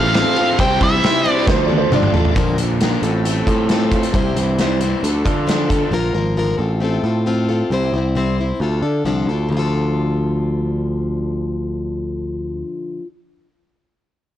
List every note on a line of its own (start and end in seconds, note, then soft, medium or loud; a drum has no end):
0.00 0.23 A1 loud
0.00 0.59 A2 medium
0.00 0.59 F3 medium
0.00 0.59 A3 medium
0.00 0.14 C4 soft
0.00 0.58 C4 medium
0.00 0.15 F4 soft
0.00 0.58 F4 medium
0.00 0.14 A4 medium
0.00 0.58 A4 medium
0.00 0.58 C5 medium
0.00 0.59 F5 loud
0.14 0.36 A3 medium
0.14 0.37 C4 medium
0.14 0.37 F4 medium
0.14 0.35 A4 loud
0.14 snare loud
0.14 ride loud
0.36 0.59 C4 soft
0.36 0.60 F4 soft
0.36 0.59 A4 medium
0.36 ride medium
0.59 0.78 C2 loud
0.59 0.81 C3 medium
0.59 0.81 G3 medium
0.59 1.46 C4 medium
0.59 0.81 C4 medium
0.59 1.46 E4 medium
0.59 0.81 E4 medium
0.59 1.47 G4 medium
0.59 1.47 C5 medium
0.59 0.79 C5 loud
0.59 0.80 G5 loud
0.59 kick loud
0.59 ride loud
0.80 1.00 C2 loud
0.80 1.03 C4 soft
0.80 1.03 E4 medium
0.80 1.02 C5 medium
0.80 1.29 E5 medium
0.80 kick medium
0.80 ride medium
1.03 1.25 C3 medium
1.03 1.25 G3 medium
1.03 1.25 C4 medium
1.03 1.25 E4 medium
1.03 1.24 C5 medium
1.03 snare loud
1.03 ride medium
1.25 1.48 G3 medium
1.25 1.47 C4 soft
1.25 1.48 E4 medium
1.25 1.47 C5 medium
1.25 ride medium
1.29 1.44 D5 medium
1.45 1.85 D2 loud
1.45 1.69 F3 medium
1.45 2.35 D4 medium
1.45 1.70 D4 medium
1.45 2.35 F4 medium
1.45 1.69 F4 medium
1.45 2.35 A4 medium
1.45 1.47 B4 medium
1.45 2.35 D5 medium
1.45 kick loud
1.45 snare medium
1.49 2.37 D3 medium
1.49 1.67 A4 medium
1.49 1.63 C5 medium
1.65 1.91 A4 medium
1.65 1.78 D5 medium
1.70 2.37 A3 medium
1.70 1.92 D4 soft
1.70 1.92 F4 soft
1.70 high tom medium
1.78 1.92 C5 medium
1.90 2.11 G1 medium
1.90 2.14 D3 loud
1.90 2.14 F3 medium
1.90 2.14 D4 loud
1.90 2.14 F4 loud
1.90 2.12 A4 loud
1.90 2.25 D5 loud
1.90 mid tom medium
2.03 mid tom medium
2.13 2.33 A1 medium
2.13 2.36 D4 medium
2.13 2.37 F4 medium
2.13 2.36 A4 medium
2.13 floor tom loud
2.25 floor tom loud
2.35 2.55 A#1 loud
2.35 2.58 A#2 medium
2.35 2.58 D3 medium
2.35 2.59 F3 loud
2.35 2.59 A#3 medium
2.35 2.59 D4 loud
2.35 2.57 A#4 medium
2.35 kick loud
2.35 closed hi-hat medium
2.57 2.96 A#1 medium
2.57 3.03 D3 medium
2.57 2.82 A#3 medium
2.57 2.81 D4 medium
2.57 2.80 A#4 medium
2.57 closed hi-hat medium
2.62 2.81 F3 soft
2.81 3.03 A#2 medium
2.81 3.03 D3 medium
2.81 3.03 F3 medium
2.81 3.04 A#3 medium
2.81 3.04 D4 loud
2.81 3.03 A#4 loud
2.81 snare loud
2.81 closed hi-hat medium
3.02 3.41 A1 medium
3.02 4.14 A2 medium
3.02 3.26 F4 medium
3.02 3.25 A4 medium
3.02 closed hi-hat medium
3.07 3.25 C4 soft
3.25 3.47 A3 medium
3.25 3.48 C4 medium
3.25 3.48 F4 medium
3.25 3.46 A4 medium
3.25 closed hi-hat medium
3.47 4.04 A2 medium
3.47 3.70 F4 soft
3.47 3.70 A4 medium
3.47 kick medium
3.47 closed hi-hat medium
3.51 3.69 C4 soft
3.69 3.92 A3 medium
3.69 3.92 C4 medium
3.69 3.93 F4 medium
3.69 3.91 A4 medium
3.69 snare loud
3.69 closed hi-hat medium
3.92 4.14 A3 medium
3.92 4.15 F4 medium
3.92 4.14 A4 medium
3.92 kick medium
3.92 closed hi-hat medium
3.96 4.13 C4 soft
4.03 closed hi-hat medium
4.13 4.33 C2 medium
4.13 4.36 C3 medium
4.13 4.36 G3 medium
4.13 4.37 C4 medium
4.13 4.37 E4 medium
4.13 4.35 C5 medium
4.13 kick loud
4.13 closed hi-hat medium
4.36 4.94 C2 medium
4.36 4.80 E3 medium
4.36 4.59 C4 soft
4.36 4.59 E4 medium
4.36 4.59 C5 medium
4.36 closed hi-hat medium
4.58 4.81 C3 medium
4.58 4.81 G3 medium
4.58 4.82 C4 medium
4.58 4.81 E4 medium
4.58 4.79 C5 medium
4.58 snare loud
4.58 closed hi-hat medium
4.81 5.03 E3 medium
4.81 5.04 C4 soft
4.81 5.04 E4 soft
4.81 5.03 C5 medium
4.81 closed hi-hat medium
5.02 5.22 D2 medium
5.02 5.93 D3 medium
5.02 5.25 F3 medium
5.02 5.26 D4 medium
5.02 5.26 F4 medium
5.02 5.23 A4 medium
5.02 closed hi-hat medium
5.25 5.83 D3 medium
5.25 5.46 D4 soft
5.25 5.47 F4 soft
5.25 5.47 A4 medium
5.25 kick medium
5.25 closed hi-hat medium
5.47 5.70 D3 medium
5.47 5.70 F3 medium
5.47 5.70 D4 medium
5.47 5.69 F4 medium
5.47 5.68 A4 loud
5.47 snare medium
5.47 closed hi-hat medium
5.69 5.93 A3 medium
5.69 5.93 D4 soft
5.69 5.92 F4 soft
5.69 5.92 A4 medium
5.69 kick medium
5.69 closed hi-hat medium
5.91 6.11 A#1 medium
5.91 6.15 A#2 loud
5.91 6.15 D3 medium
5.91 6.15 F3 medium
5.91 6.15 A#3 loud
5.91 6.15 F4 medium
5.91 6.13 A#4 loud
6.13 6.53 G#1 medium
6.13 6.37 A#3 medium
6.13 6.37 F4 medium
6.13 6.37 A#4 medium
6.18 6.36 F3 soft
6.36 6.59 A#2 medium
6.36 6.60 D3 medium
6.36 6.60 F3 medium
6.36 6.60 A#3 medium
6.36 6.58 F4 medium
6.36 6.58 A#4 loud
6.58 6.98 A1 loud
6.58 6.80 C4 soft
6.58 6.82 F4 medium
6.58 6.81 A4 medium
6.80 7.04 A3 medium
6.80 7.04 C4 medium
6.80 7.05 F4 medium
6.80 7.02 A4 medium
7.03 7.62 A2 medium
7.03 7.26 C4 soft
7.03 7.26 F4 soft
7.03 7.26 A4 medium
7.26 7.49 A3 medium
7.26 7.49 C4 medium
7.26 7.49 F4 loud
7.26 7.48 A4 medium
7.49 7.71 C4 soft
7.49 7.72 F4 medium
7.49 7.71 A4 medium
7.70 7.90 C2 medium
7.70 7.94 C3 medium
7.70 7.94 G3 medium
7.70 7.94 C4 medium
7.70 7.94 E4 medium
7.70 7.92 C5 medium
7.93 8.51 C2 medium
7.93 8.16 E4 medium
7.93 8.16 C5 medium
7.97 8.16 C4 soft
8.15 8.38 C3 medium
8.15 8.39 G3 medium
8.15 8.39 C4 medium
8.15 8.39 E4 medium
8.15 8.37 C5 medium
8.38 8.61 C4 soft
8.38 8.62 E4 soft
8.38 8.61 C5 medium
8.60 8.80 D2 medium
8.60 8.83 F3 medium
8.60 8.84 D4 medium
8.60 8.83 F4 medium
8.60 8.81 A4 medium
8.82 9.02 D3 medium
8.82 9.05 D4 soft
8.82 9.05 F4 soft
8.82 9.05 A4 medium
9.05 9.25 C2 medium
9.05 9.28 D3 medium
9.05 9.28 F3 medium
9.05 9.29 D4 medium
9.05 9.29 F4 medium
9.05 9.28 A4 medium
9.27 9.48 D2 medium
9.27 9.52 F4 soft
9.27 9.51 A4 medium
9.31 9.52 D4 soft
9.49 12.62 D2 medium
9.49 12.99 D3 medium
9.49 13.02 F3 medium
9.54 13.04 D4 medium
9.54 13.07 F4 medium
9.59 13.09 A4 medium